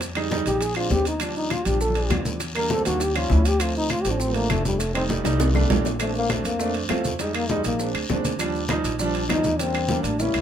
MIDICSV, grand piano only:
0, 0, Header, 1, 2, 480
1, 0, Start_track
1, 0, Key_signature, -2, "major"
1, 0, Tempo, 299551
1, 21, Time_signature, 4, 2, 24, 8
1, 16686, End_track
2, 0, Start_track
2, 0, Title_t, "Grand piano"
2, 0, Program_c, 0, 0
2, 245, Note_on_c, 0, 55, 83
2, 251, Note_on_c, 0, 56, 80
2, 269, Note_on_c, 0, 63, 101
2, 421, Note_off_c, 0, 55, 0
2, 424, Note_off_c, 0, 56, 0
2, 433, Note_off_c, 0, 63, 0
2, 491, Note_on_c, 0, 55, 92
2, 504, Note_on_c, 0, 56, 78
2, 517, Note_on_c, 0, 63, 107
2, 664, Note_off_c, 0, 55, 0
2, 671, Note_off_c, 0, 56, 0
2, 677, Note_off_c, 0, 63, 0
2, 724, Note_on_c, 0, 55, 75
2, 739, Note_on_c, 0, 56, 70
2, 752, Note_on_c, 0, 63, 78
2, 972, Note_off_c, 0, 55, 0
2, 980, Note_off_c, 0, 56, 0
2, 986, Note_off_c, 0, 63, 0
2, 1195, Note_on_c, 0, 56, 77
2, 1213, Note_on_c, 0, 60, 70
2, 1226, Note_on_c, 0, 62, 88
2, 1711, Note_off_c, 0, 56, 0
2, 1720, Note_off_c, 0, 60, 0
2, 1727, Note_off_c, 0, 62, 0
2, 1918, Note_on_c, 0, 53, 64
2, 1929, Note_on_c, 0, 55, 67
2, 1943, Note_on_c, 0, 62, 82
2, 2433, Note_off_c, 0, 53, 0
2, 2438, Note_off_c, 0, 55, 0
2, 2445, Note_off_c, 0, 62, 0
2, 2643, Note_on_c, 0, 53, 67
2, 2660, Note_on_c, 0, 55, 69
2, 2665, Note_on_c, 0, 62, 84
2, 2903, Note_off_c, 0, 53, 0
2, 2912, Note_off_c, 0, 55, 0
2, 2914, Note_off_c, 0, 62, 0
2, 2996, Note_on_c, 0, 53, 77
2, 3010, Note_on_c, 0, 55, 64
2, 3029, Note_on_c, 0, 62, 81
2, 3092, Note_off_c, 0, 53, 0
2, 3099, Note_off_c, 0, 55, 0
2, 3108, Note_off_c, 0, 62, 0
2, 3130, Note_on_c, 0, 53, 74
2, 3139, Note_on_c, 0, 55, 64
2, 3157, Note_on_c, 0, 62, 79
2, 3806, Note_off_c, 0, 53, 0
2, 3811, Note_off_c, 0, 55, 0
2, 3820, Note_off_c, 0, 62, 0
2, 4101, Note_on_c, 0, 55, 71
2, 4118, Note_on_c, 0, 58, 73
2, 4127, Note_on_c, 0, 62, 82
2, 4268, Note_off_c, 0, 55, 0
2, 4276, Note_off_c, 0, 58, 0
2, 4281, Note_off_c, 0, 62, 0
2, 4323, Note_on_c, 0, 55, 76
2, 4341, Note_on_c, 0, 58, 65
2, 4354, Note_on_c, 0, 60, 88
2, 4499, Note_off_c, 0, 55, 0
2, 4508, Note_off_c, 0, 58, 0
2, 4514, Note_off_c, 0, 60, 0
2, 4568, Note_on_c, 0, 55, 78
2, 4583, Note_on_c, 0, 58, 70
2, 4600, Note_on_c, 0, 62, 82
2, 4813, Note_off_c, 0, 55, 0
2, 4820, Note_off_c, 0, 58, 0
2, 4829, Note_off_c, 0, 62, 0
2, 5037, Note_on_c, 0, 53, 74
2, 5049, Note_on_c, 0, 55, 69
2, 5061, Note_on_c, 0, 61, 87
2, 5551, Note_off_c, 0, 53, 0
2, 5557, Note_off_c, 0, 55, 0
2, 5563, Note_off_c, 0, 61, 0
2, 5765, Note_on_c, 0, 53, 70
2, 5768, Note_on_c, 0, 57, 64
2, 5786, Note_on_c, 0, 60, 79
2, 6275, Note_off_c, 0, 53, 0
2, 6277, Note_off_c, 0, 57, 0
2, 6285, Note_off_c, 0, 60, 0
2, 6473, Note_on_c, 0, 53, 75
2, 6486, Note_on_c, 0, 57, 65
2, 6499, Note_on_c, 0, 60, 83
2, 6737, Note_off_c, 0, 53, 0
2, 6743, Note_off_c, 0, 57, 0
2, 6750, Note_off_c, 0, 60, 0
2, 6839, Note_on_c, 0, 53, 76
2, 6855, Note_on_c, 0, 57, 69
2, 6867, Note_on_c, 0, 60, 79
2, 6931, Note_off_c, 0, 53, 0
2, 6940, Note_off_c, 0, 57, 0
2, 6946, Note_off_c, 0, 60, 0
2, 6956, Note_on_c, 0, 53, 79
2, 6964, Note_on_c, 0, 57, 69
2, 6976, Note_on_c, 0, 62, 81
2, 7638, Note_off_c, 0, 53, 0
2, 7642, Note_off_c, 0, 57, 0
2, 7648, Note_off_c, 0, 62, 0
2, 7927, Note_on_c, 0, 55, 73
2, 7936, Note_on_c, 0, 57, 71
2, 7948, Note_on_c, 0, 63, 81
2, 8100, Note_off_c, 0, 55, 0
2, 8104, Note_off_c, 0, 57, 0
2, 8111, Note_off_c, 0, 63, 0
2, 8152, Note_on_c, 0, 55, 82
2, 8159, Note_on_c, 0, 57, 72
2, 8178, Note_on_c, 0, 63, 84
2, 8332, Note_off_c, 0, 55, 0
2, 8336, Note_off_c, 0, 57, 0
2, 8345, Note_off_c, 0, 63, 0
2, 8390, Note_on_c, 0, 55, 95
2, 8402, Note_on_c, 0, 57, 85
2, 8420, Note_on_c, 0, 63, 104
2, 8739, Note_off_c, 0, 55, 0
2, 8745, Note_off_c, 0, 57, 0
2, 8754, Note_off_c, 0, 63, 0
2, 8883, Note_on_c, 0, 55, 94
2, 8893, Note_on_c, 0, 57, 89
2, 8906, Note_on_c, 0, 62, 104
2, 9394, Note_off_c, 0, 55, 0
2, 9399, Note_off_c, 0, 57, 0
2, 9406, Note_off_c, 0, 62, 0
2, 9610, Note_on_c, 0, 57, 80
2, 9613, Note_on_c, 0, 60, 69
2, 9637, Note_on_c, 0, 62, 85
2, 9949, Note_off_c, 0, 57, 0
2, 9951, Note_off_c, 0, 60, 0
2, 9963, Note_off_c, 0, 62, 0
2, 10078, Note_on_c, 0, 57, 76
2, 10094, Note_on_c, 0, 60, 67
2, 10109, Note_on_c, 0, 62, 83
2, 10424, Note_off_c, 0, 57, 0
2, 10432, Note_off_c, 0, 60, 0
2, 10439, Note_off_c, 0, 62, 0
2, 10561, Note_on_c, 0, 57, 90
2, 10577, Note_on_c, 0, 60, 75
2, 10593, Note_on_c, 0, 62, 98
2, 10905, Note_off_c, 0, 57, 0
2, 10913, Note_off_c, 0, 60, 0
2, 10921, Note_off_c, 0, 62, 0
2, 11046, Note_on_c, 0, 57, 90
2, 11059, Note_on_c, 0, 60, 87
2, 11070, Note_on_c, 0, 65, 95
2, 11388, Note_off_c, 0, 57, 0
2, 11394, Note_off_c, 0, 60, 0
2, 11400, Note_off_c, 0, 65, 0
2, 11522, Note_on_c, 0, 55, 69
2, 11534, Note_on_c, 0, 56, 59
2, 11546, Note_on_c, 0, 63, 79
2, 11866, Note_off_c, 0, 55, 0
2, 11872, Note_off_c, 0, 56, 0
2, 11878, Note_off_c, 0, 63, 0
2, 12006, Note_on_c, 0, 55, 86
2, 12024, Note_on_c, 0, 56, 75
2, 12037, Note_on_c, 0, 63, 91
2, 12348, Note_off_c, 0, 55, 0
2, 12357, Note_off_c, 0, 56, 0
2, 12364, Note_off_c, 0, 63, 0
2, 12483, Note_on_c, 0, 56, 79
2, 12504, Note_on_c, 0, 60, 64
2, 12516, Note_on_c, 0, 62, 83
2, 12827, Note_off_c, 0, 56, 0
2, 12837, Note_off_c, 0, 60, 0
2, 12843, Note_off_c, 0, 62, 0
2, 12971, Note_on_c, 0, 56, 90
2, 12987, Note_on_c, 0, 60, 82
2, 12994, Note_on_c, 0, 62, 99
2, 13311, Note_off_c, 0, 56, 0
2, 13319, Note_off_c, 0, 60, 0
2, 13322, Note_off_c, 0, 62, 0
2, 13438, Note_on_c, 0, 53, 88
2, 13455, Note_on_c, 0, 55, 92
2, 13471, Note_on_c, 0, 62, 104
2, 13784, Note_off_c, 0, 53, 0
2, 13792, Note_off_c, 0, 55, 0
2, 13801, Note_off_c, 0, 62, 0
2, 13926, Note_on_c, 0, 53, 90
2, 13946, Note_on_c, 0, 55, 85
2, 13957, Note_on_c, 0, 63, 101
2, 14268, Note_off_c, 0, 53, 0
2, 14278, Note_off_c, 0, 55, 0
2, 14284, Note_off_c, 0, 63, 0
2, 14405, Note_on_c, 0, 53, 107
2, 14420, Note_on_c, 0, 55, 92
2, 14440, Note_on_c, 0, 62, 119
2, 14748, Note_off_c, 0, 53, 0
2, 14755, Note_off_c, 0, 55, 0
2, 14765, Note_off_c, 0, 62, 0
2, 14886, Note_on_c, 0, 53, 78
2, 14909, Note_on_c, 0, 55, 73
2, 14921, Note_on_c, 0, 63, 84
2, 15228, Note_off_c, 0, 53, 0
2, 15239, Note_off_c, 0, 55, 0
2, 15246, Note_off_c, 0, 63, 0
2, 15373, Note_on_c, 0, 55, 70
2, 15387, Note_on_c, 0, 58, 64
2, 15401, Note_on_c, 0, 62, 75
2, 15712, Note_off_c, 0, 55, 0
2, 15719, Note_off_c, 0, 58, 0
2, 15726, Note_off_c, 0, 62, 0
2, 15842, Note_on_c, 0, 55, 79
2, 15855, Note_on_c, 0, 58, 71
2, 15872, Note_on_c, 0, 62, 90
2, 16186, Note_off_c, 0, 55, 0
2, 16193, Note_off_c, 0, 58, 0
2, 16201, Note_off_c, 0, 62, 0
2, 16338, Note_on_c, 0, 55, 76
2, 16349, Note_on_c, 0, 58, 66
2, 16367, Note_on_c, 0, 61, 80
2, 16674, Note_off_c, 0, 55, 0
2, 16680, Note_off_c, 0, 58, 0
2, 16686, Note_off_c, 0, 61, 0
2, 16686, End_track
0, 0, End_of_file